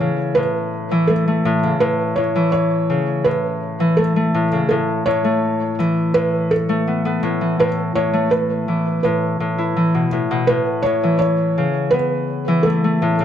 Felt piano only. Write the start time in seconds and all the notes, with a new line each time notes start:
Already playing: C#5
0.35 B4
1.07 A4
1.80 B4
2.16 C#5
2.52 C#5
3.24 B4
3.97 A4
4.69 A4
5.06 C#5
6.14 B4
6.51 A4
7.60 B4
7.95 C#5
8.31 B4
9.03 B4
10.47 B4
10.83 C#5
11.19 C#5
11.91 B4
12.63 A4